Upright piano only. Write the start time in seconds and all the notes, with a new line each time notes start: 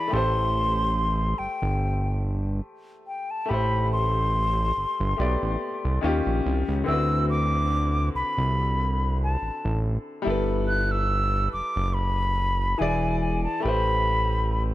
Already playing: E3 E4 G#4 D5
0.08 A3 G4
0.13 A4 C5
3.46 A3 G4
3.51 A4 C5
5.17 A3 B3 G4
5.21 D5
6.01 D#3 C#4 F4
6.05 G4
6.84 D3 C4
6.88 E4 F#4
6.92 B4
10.22 G3 E4
10.28 A4 B4
12.78 E3 E4 G#4
12.82 D5
13.60 A3 G4
13.66 B4 C5